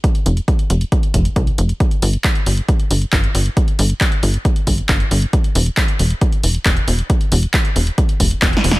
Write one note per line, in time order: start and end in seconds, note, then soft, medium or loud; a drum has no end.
0.04 kick loud
0.04 closed hi-hat medium
0.15 closed hi-hat soft
0.26 0.40 F1 medium
0.26 closed hi-hat medium
0.37 closed hi-hat soft
0.48 kick loud
0.48 closed hi-hat medium
0.59 closed hi-hat soft
0.70 0.84 F1 medium
0.70 closed hi-hat medium
0.81 closed hi-hat soft
0.92 kick loud
0.92 closed hi-hat medium
1.03 closed hi-hat soft
1.14 1.29 F1 medium
1.14 kick medium
1.14 closed hi-hat medium
1.25 closed hi-hat soft
1.36 1.51 C2 loud
1.36 kick loud
1.36 closed hi-hat medium
1.47 closed hi-hat soft
1.58 1.73 F1 medium
1.58 closed hi-hat medium
1.69 closed hi-hat soft
1.80 kick loud
1.80 closed hi-hat medium
1.91 closed hi-hat soft
2.02 2.17 G1 loud
2.02 open hi-hat loud
2.13 closed hi-hat soft
2.24 kick loud
2.24 clap loud
2.24 closed hi-hat medium
2.35 closed hi-hat soft
2.46 2.61 G1 medium
2.46 open hi-hat medium
2.57 closed hi-hat soft
2.68 kick loud
2.68 closed hi-hat medium
2.79 closed hi-hat soft
2.91 3.05 G1 medium
2.91 open hi-hat loud
3.02 closed hi-hat soft
3.13 3.27 G1 medium
3.13 kick loud
3.13 clap loud
3.13 closed hi-hat medium
3.24 closed hi-hat soft
3.35 3.49 G1 loud
3.35 open hi-hat medium
3.46 closed hi-hat soft
3.57 kick loud
3.57 closed hi-hat medium
3.68 closed hi-hat soft
3.79 3.93 G1 medium
3.79 open hi-hat loud
3.90 closed hi-hat soft
4.01 kick loud
4.01 clap loud
4.01 closed hi-hat medium
4.12 closed hi-hat soft
4.23 4.37 G1 medium
4.23 open hi-hat medium
4.34 closed hi-hat soft
4.45 kick loud
4.45 closed hi-hat medium
4.56 closed hi-hat soft
4.67 4.82 G1 medium
4.67 kick medium
4.67 open hi-hat loud
4.78 closed hi-hat soft
4.89 5.04 G1 medium
4.89 kick loud
4.89 clap loud
4.89 closed hi-hat medium
5.00 closed hi-hat soft
5.11 5.26 G1 loud
5.11 open hi-hat medium
5.22 closed hi-hat soft
5.33 kick loud
5.33 closed hi-hat medium
5.44 closed hi-hat soft
5.55 5.70 E1 loud
5.55 open hi-hat loud
5.66 closed hi-hat soft
5.77 kick loud
5.77 clap loud
5.77 closed hi-hat medium
5.88 closed hi-hat soft
5.99 6.14 E1 medium
5.99 open hi-hat medium
6.10 closed hi-hat soft
6.21 kick loud
6.21 closed hi-hat medium
6.32 closed hi-hat soft
6.43 6.58 E1 medium
6.43 open hi-hat medium
6.55 closed hi-hat soft
6.66 6.80 E1 medium
6.66 kick loud
6.66 clap loud
6.66 closed hi-hat medium
6.77 closed hi-hat soft
6.88 7.02 E1 loud
6.88 open hi-hat medium
6.99 closed hi-hat soft
7.10 kick loud
7.10 closed hi-hat medium
7.21 closed hi-hat soft
7.32 7.46 E1 loud
7.32 open hi-hat loud
7.43 closed hi-hat soft
7.54 kick loud
7.54 clap loud
7.54 closed hi-hat medium
7.65 closed hi-hat soft
7.76 7.90 E1 medium
7.76 open hi-hat medium
7.87 closed hi-hat soft
7.98 kick loud
7.98 closed hi-hat medium
8.09 closed hi-hat soft
8.20 8.35 E1 medium
8.20 kick medium
8.20 open hi-hat loud
8.31 closed hi-hat soft
8.42 8.57 E1 loud
8.42 kick loud
8.42 snare medium
8.42 clap loud
8.42 closed hi-hat medium
8.53 snare medium
8.53 closed hi-hat soft
8.64 8.79 E1 medium
8.64 open hi-hat medium
8.71 snare medium
8.71 closed hi-hat soft